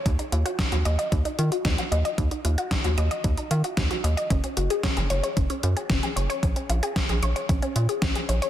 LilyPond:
<<
  \new Staff \with { instrumentName = "Synth arpeggio sound" } { \time 4/4 \key ees \minor \tempo 4 = 113 ees'16 ees'16 f'16 ges'16 ees'16 ges'16 ees''16 ees''16 ees'16 ees'16 f'16 ges'16 ees'16 ges'16 ees''16 ees''16 | ees'16 ees'16 f'16 ges'16 ees'16 ges'16 ees''16 ees''16 ees'16 ees'16 f'16 ges'16 ees'16 ges'16 ees''16 ees''16 | des'16 des'16 ges'16 aes'16 des'16 aes'16 des''16 des''16 des'16 des'16 ges'16 aes'16 des'16 aes'16 des''16 des''16 | des'16 des'16 f'16 aes'16 des'16 aes'16 des''16 des''16 des'16 des'16 f'16 aes'16 des'16 aes'16 des''16 des''16 | }
  \new Staff \with { instrumentName = "Analog synth bass" } { \clef bass \time 4/4 \key ees \minor ees,16 r16 ees,16 r8 ees,16 ees,16 r16 ees,16 r16 ees16 r16 ees,16 r16 ees,16 r16 | ees,16 r16 ees,16 r8 ees,16 ees,16 r16 ees,16 r16 ees16 r16 ees,16 r16 ees,16 r16 | ges,,16 r16 ges,,16 r8 ges,,16 ges,,16 r16 ges,,16 r16 ges,16 r16 ges,,16 r16 ges,,16 r16 | bes,,16 r16 bes,,16 r8 bes,,16 bes,,16 r16 bes,,16 r16 bes,16 r16 bes,,16 r16 bes,,16 r16 | }
  \new DrumStaff \with { instrumentName = "Drums" } \drummode { \time 4/4 <hh bd>16 hh16 hh16 hh16 <hh bd sn>16 hh16 hh16 hh16 <hh bd>16 hh16 hh16 hh16 <hh bd sn>16 hh16 hh16 hh16 | <hh bd>16 hh16 hh16 hh16 <hh bd sn>16 hh16 hh16 hh16 <hh bd>16 hh16 hh16 hh16 <hh bd sn>16 hh16 hh16 hh16 | <hh bd>16 hh16 hh16 hh16 <hh bd sn>16 hh16 hh16 hh16 <hh bd>16 hh16 hh16 hh16 <hh bd sn>16 hh16 hh16 hh16 | <hh bd>16 hh16 hh16 hh16 <hh bd sn>16 hh16 hh16 hh16 <hh bd>16 hh16 hh16 hh16 <hh bd sn>16 hh16 hh16 hh16 | }
>>